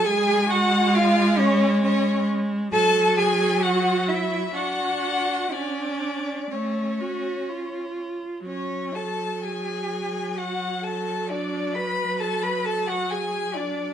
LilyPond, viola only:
\new Staff \with { instrumentName = "Viola" } { \time 3/4 \key fis \minor \tempo 4 = 65 gis2. | fis2 d'4 | cis'4 a8 fis'8 eis'4 | fis2.~ |
fis2. | }